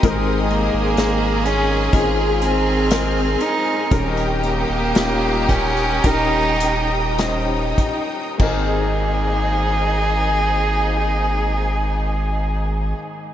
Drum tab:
CC |----------------|----------------|x---------------|
HH |x-x-x-x-x-x-x-x-|xxx-x-xxx-x-x-x-|----------------|
SD |----o-------o---|----o-------o---|----------------|
BD |o-------o-------|o-----o-o-----o-|o---------------|